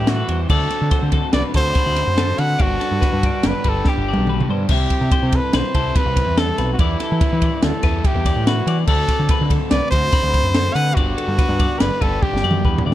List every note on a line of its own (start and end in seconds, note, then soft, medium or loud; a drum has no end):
0.00 0.22 A2 medium
0.00 0.48 E3 medium
0.00 0.49 G3 medium
0.00 0.50 B3 medium
0.00 0.50 E4 medium
0.00 0.11 G4 loud
0.07 0.47 E3 medium
0.07 0.27 E4 medium
0.07 0.40 F#4 medium
0.07 0.29 B4 medium
0.07 snare loud
0.07 ride loud
0.28 0.45 E2 medium
0.28 0.47 E4 medium
0.28 0.50 C5 medium
0.28 ride medium
0.49 0.66 D2 medium
0.49 2.16 D3 medium
0.49 1.54 D3 medium
0.49 1.54 A3 medium
0.49 1.55 C4 loud
0.49 0.70 F#4 medium
0.49 1.55 F#4 loud
0.49 1.03 A4 loud
0.49 0.91 D5 medium
0.49 kick loud
0.49 crash medium
0.70 0.92 F#4 medium
0.70 snare soft
0.70 ride medium
0.82 0.90 D3 medium
0.91 1.13 F#4 medium
0.91 1.12 C5 medium
0.91 kick loud
0.91 snare soft
0.91 ride loud
1.02 1.19 D3 medium
1.12 2.57 A3 medium
1.12 1.56 F#4 medium
1.12 1.33 A4 medium
1.12 kick medium
1.12 ride medium
1.33 1.42 C2 medium
1.33 1.76 D4 medium
1.33 1.54 B4 medium
1.33 1.43 D5 medium
1.33 snare loud
1.33 ride loud
1.54 1.71 D2 medium
1.54 1.75 A3 medium
1.54 1.76 C4 medium
1.54 1.75 F#4 loud
1.54 1.96 F#4 medium
1.54 1.76 A4 medium
1.54 2.41 C5 loud
1.54 kick medium
1.54 snare soft
1.54 ride medium
1.58 1.75 D3 medium
1.75 2.18 A2 medium
1.75 2.59 D3 medium
1.75 2.59 A3 medium
1.75 2.60 C4 medium
1.75 2.58 D4 medium
1.75 2.60 F#4 medium
1.75 2.18 B5 medium
1.75 kick loud
1.75 snare soft
1.75 ride loud
1.86 2.02 D2 loud
1.96 2.16 F#4 medium
1.96 snare soft
1.96 ride medium
2.07 2.32 F#2 medium
2.17 2.60 D3 medium
2.17 2.39 F#4 medium
2.17 2.38 A4 medium
2.17 snare loud
2.17 ride loud
2.38 2.55 D3 medium
2.38 2.58 F#4 medium
2.38 2.60 B4 medium
2.38 2.63 F#5 loud
2.38 snare soft
2.38 ride medium
2.59 2.76 G1 medium
2.59 3.64 G2 medium
2.59 4.27 G2 medium
2.59 3.64 D3 medium
2.59 3.64 G3 loud
2.59 3.64 B3 loud
2.59 2.81 D4 medium
2.59 3.64 D4 medium
2.59 3.48 F#4 loud
2.59 3.64 G4 loud
2.59 2.80 D5 medium
2.59 kick loud
2.59 ride loud
2.80 3.03 D4 medium
2.80 3.02 A4 medium
2.80 snare soft
2.80 ride medium
2.92 3.00 G2 medium
3.01 3.24 D4 medium
3.01 3.23 B4 medium
3.01 kick loud
3.01 snare soft
3.01 ride loud
3.13 3.29 G2 loud
3.23 6.80 G3 medium
3.23 3.65 D4 medium
3.23 3.65 D5 medium
3.23 kick medium
3.23 ride medium
3.43 3.53 F#1 loud
3.43 3.87 B3 medium
3.43 3.70 B4 medium
3.43 snare loud
3.43 ride loud
3.64 3.81 G1 medium
3.64 3.85 G2 medium
3.64 3.86 D3 medium
3.64 3.86 G3 medium
3.64 3.85 B3 medium
3.64 3.85 D4 medium
3.64 4.08 D4 medium
3.64 3.85 G4 medium
3.64 3.86 B4 medium
3.64 kick medium
3.64 ride medium
3.69 3.91 A4 medium
3.84 4.69 G2 medium
3.84 4.69 D3 medium
3.84 4.70 D3 medium
3.84 4.69 G3 medium
3.84 4.70 B3 medium
3.84 4.08 G4 medium
3.84 kick loud
3.84 snare medium
3.89 4.70 D4 medium
3.89 4.70 G4 medium
3.89 4.51 G4 medium
3.97 4.13 G1 loud
4.08 4.28 D4 medium
4.08 4.29 D5 medium
4.14 4.42 B1 medium
4.14 high tom medium
4.27 4.70 G2 medium
4.27 4.49 D4 medium
4.27 4.50 B4 medium
4.27 mid tom medium
4.41 mid tom medium
4.49 4.65 G2 medium
4.49 4.70 D4 medium
4.49 4.71 C5 medium
4.69 4.86 C2 medium
4.69 5.73 C3 medium
4.69 5.77 G3 medium
4.69 5.75 C4 loud
4.69 5.12 E5 medium
4.69 kick loud
4.69 crash loud
4.73 5.75 E4 medium
4.73 5.37 G4 medium
4.90 kick medium
4.90 ride medium
5.01 5.09 C3 medium
5.11 5.33 C5 medium
5.11 kick loud
5.11 ride loud
5.23 5.39 C3 medium
5.32 5.54 A4 medium
5.32 5.57 B4 medium
5.32 kick medium
5.32 ride medium
5.53 5.62 B1 loud
5.53 5.75 B4 medium
5.53 5.98 C5 medium
5.53 snare loud
5.53 ride loud
5.75 5.91 C2 medium
5.75 5.95 C3 medium
5.75 5.96 G3 medium
5.75 5.95 C4 medium
5.75 5.95 E4 loud
5.75 5.95 A4 medium
5.75 kick medium
5.75 ride medium
5.95 6.78 C3 medium
5.95 6.79 G3 medium
5.95 6.79 C4 medium
5.95 6.37 B4 loud
5.95 6.40 B4 loud
5.95 kick loud
5.95 snare soft
5.95 ride loud
5.99 6.80 E4 medium
6.06 6.22 C2 loud
6.16 kick medium
6.16 snare soft
6.16 ride medium
6.26 6.51 E2 medium
6.37 6.58 A4 medium
6.37 6.70 A4 medium
6.37 snare loud
6.37 ride loud
6.58 6.74 B1 loud
6.58 6.79 B4 medium
6.58 snare soft
6.58 ride medium
6.73 6.81 F#4 medium
6.79 6.95 E2 loud
6.79 7.83 E3 loud
6.79 7.83 G3 medium
6.79 7.84 B3 loud
6.79 7.63 E4 loud
6.79 7.83 E4 loud
6.79 7.00 D5 medium
6.79 kick loud
6.79 ride loud
7.00 7.22 A4 medium
7.00 snare soft
7.00 ride medium
7.12 7.19 E3 medium
7.21 7.43 B4 medium
7.21 kick loud
7.21 ride loud
7.33 7.48 E3 loud
7.42 7.84 D5 medium
7.42 kick medium
7.42 ride medium
7.62 7.71 D2 loud
7.62 8.07 A4 medium
7.62 snare loud
7.62 ride loud
7.83 8.00 E2 medium
7.83 8.04 G3 loud
7.83 8.04 B3 medium
7.83 8.04 E4 medium
7.83 8.04 B4 medium
7.83 kick medium
7.83 snare soft
7.83 ride medium
7.87 8.04 E3 medium
8.04 8.87 E3 medium
8.04 8.88 G3 medium
8.04 8.88 B3 medium
8.04 8.89 E4 loud
8.04 8.25 G4 medium
8.04 8.48 G4 loud
8.04 kick loud
8.04 ride loud
8.15 8.31 E2 loud
8.25 8.47 D5 medium
8.25 kick medium
8.25 snare soft
8.25 ride medium
8.36 8.60 A2 loud
8.47 8.78 F#4 medium
8.47 8.68 B4 medium
8.47 snare loud
8.47 ride loud
8.66 8.83 E3 loud
8.66 8.88 D5 medium
8.66 ride medium
8.87 9.04 D2 loud
8.87 9.92 D3 medium
8.87 9.92 A3 loud
8.87 9.93 C4 loud
8.87 9.41 A4 loud
8.87 9.30 D5 medium
8.87 kick loud
8.87 crash loud
8.92 9.92 F#4 loud
9.08 kick medium
9.08 snare soft
9.08 ride medium
9.19 9.27 D3 loud
9.29 9.51 B4 medium
9.29 kick loud
9.29 snare soft
9.29 ride loud
9.41 9.57 D3 loud
9.50 9.72 A4 medium
9.50 kick medium
9.50 ride medium
9.70 9.80 C2 loud
9.70 9.93 B4 medium
9.70 9.90 D5 loud
9.70 snare loud
9.70 ride loud
9.91 10.08 D2 loud
9.91 10.13 A3 medium
9.91 10.13 C4 medium
9.91 10.17 F#4 loud
9.91 10.14 A4 medium
9.91 10.76 C5 loud
9.91 kick medium
9.91 snare soft
9.91 ride medium
9.96 10.13 D3 medium
10.12 10.96 D3 medium
10.12 10.97 A3 medium
10.12 10.55 B5 medium
10.12 kick loud
10.12 snare soft
10.12 ride loud
10.17 10.97 C4 medium
10.17 10.98 F#4 medium
10.23 10.39 D2 loud
10.34 kick medium
10.34 ride medium
10.44 10.68 F#2 loud
10.54 10.75 A4 medium
10.54 snare loud
10.54 ride loud
10.74 10.92 D3 loud
10.74 10.97 B4 medium
10.74 10.96 F#5 loud
10.74 ride medium
10.95 11.13 G1 loud
10.95 12.00 G2 medium
10.95 12.01 D3 medium
10.95 12.01 G3 medium
10.95 12.01 B3 medium
10.95 11.81 F#4 loud
10.95 11.18 D5 medium
10.95 kick loud
10.95 ride loud
10.99 12.01 D4 loud
10.99 12.00 G4 loud
11.18 11.38 A4 medium
11.18 ride medium
11.28 11.36 G2 medium
11.39 11.60 B4 medium
11.39 kick loud
11.39 snare soft
11.39 ride loud
11.49 11.65 G2 medium
11.60 12.02 D5 medium
11.60 kick medium
11.60 ride medium
11.80 11.89 F#1 loud
11.80 12.03 B4 loud
11.80 snare loud
11.80 ride loud
12.01 12.18 G1 loud
12.01 12.21 G2 medium
12.01 12.22 D3 medium
12.01 12.22 G3 medium
12.01 12.22 B3 medium
12.01 12.22 D4 medium
12.01 12.21 G4 medium
12.01 12.24 A4 medium
12.01 12.22 B4 medium
12.01 kick medium
12.01 ride medium
12.22 12.94 G2 medium
12.22 12.94 D3 medium
12.22 12.94 G3 medium
12.22 12.94 B3 medium
12.22 12.94 D4 medium
12.22 12.44 G4 loud
12.22 12.86 G4 loud
12.22 12.94 G4 medium
12.22 kick loud
12.33 12.41 G1 loud
12.33 snare medium
12.44 12.63 F#2 loud
12.44 12.65 D5 medium
12.51 mid tom medium
12.65 12.84 E2 medium
12.65 12.86 B4 medium
12.65 kick medium
12.78 floor tom loud
12.86 12.94 D2 medium
12.86 12.94 D5 medium